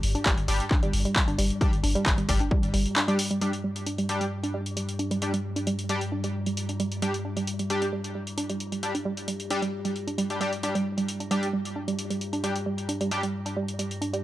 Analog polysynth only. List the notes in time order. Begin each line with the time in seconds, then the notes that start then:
0.48 G3 D4 G4
1.61 G3 D4 G4
2.29 G3 D4 G4
3.08 G3 D4 G4
3.41 G3 D4 G4
4.09 G3 D4 G4
5.22 G3 D4 G4
5.89 G3 D4 G4
7.02 G3 D4 G4
7.70 G3 D4 G4
8.83 G3 D4 G4
9.51 G3 D4 G4
10.30 G3 D4 G4
10.41 G3 D4 G4
10.63 G3 D4 G4
11.31 G3 D4 G4
12.44 G3 D4 G4
13.11 G3 D4 G4